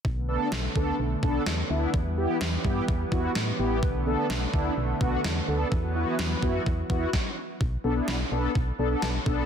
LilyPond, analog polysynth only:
\new Staff \with { instrumentName = "Analog polysynth" } { \time 4/4 \key b \minor \tempo 4 = 127 r8 <b d' a'>8 r8 <b d' a'>8 r8 <b d' a'>8 r8 <b d' e'>8 | r8 <b e' g'>8 r8 <b e' g'>8 r8 <b e' fis'>8 r8 <b e' g'>8 | r8 <b d' a'>8 r8 <b d' e'>8 r8 <b d' fis'>8 r8 <b d' a'>8 | r8 <b e' fis'>8 r8 <b e' fis'>8 r8 <b e' fis'>8 r4 |
r8 <b d' a'>16 <b d' e'>8 r16 <b d' a'>8 r8 <b d' a'>16 <b d' a'>8 r16 <b d' a'>8 | }